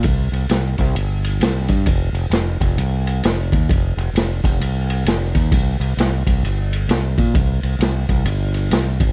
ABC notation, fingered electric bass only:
X:1
M:4/4
L:1/8
Q:"Swing" 1/4=132
K:Cm
V:1 name="Fingered electric bass" clef=bass
C,, C,, C,, C,, G,,,2 C,, G,, | F,,, F,,, F,,, F,,, C,,2 F,,, E,, | F,,, F,,, F,,, F,,, C,,2 F,,, E,, | C,, C,, C,, C,, G,,,2 C,, B,, |
C,, C,, C,, C,, G,,,2 C,, A,,, |]